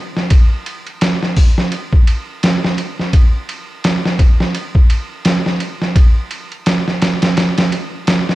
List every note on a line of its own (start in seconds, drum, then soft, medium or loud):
0.17 snare soft
0.30 kick loud
0.30 ride medium
0.66 ride medium
0.87 ride soft
1.01 snare loud
1.01 ride medium
1.23 snare soft
1.37 kick medium
1.37 open hi-hat medium
1.58 snare medium
1.72 ride medium
1.93 kick medium
2.07 ride medium
2.43 snare loud
2.43 ride medium
2.64 snare medium
2.78 ride medium
2.99 snare soft
3.13 kick loud
3.13 ride medium
3.49 ride medium
3.84 snare loud
3.84 ride medium
4.05 snare medium
4.19 kick medium
4.19 ride medium
4.40 snare medium
4.55 ride medium
4.75 kick loud
4.90 ride medium
5.25 snare loud
5.25 ride loud
5.46 snare medium
5.60 ride medium
5.82 snare soft
5.96 kick loud
5.96 ride medium
6.31 ride medium
6.52 ride soft
6.66 snare loud
6.66 ride medium
6.88 snare soft
7.02 snare loud
7.02 ride medium
7.22 snare loud
7.22 ride medium
7.37 snare loud
7.37 ride medium
7.58 snare loud
7.58 ride medium
7.72 ride medium
8.07 snare loud
8.07 ride medium
8.29 snare medium